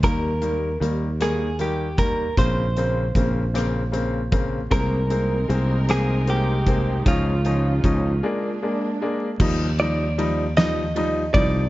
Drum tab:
CC |------|------|------|------|
RD |------|------|------|------|
HH |xxxxxx|xxxxxx|xxxxxx|xxx---|
SD |---r--|---r--|---r--|------|
BD |o----o|o-o--o|o----o|o-o---|

CC |x-----|
RD |-xxxxx|
HH |------|
SD |---o--|
BD |o----o|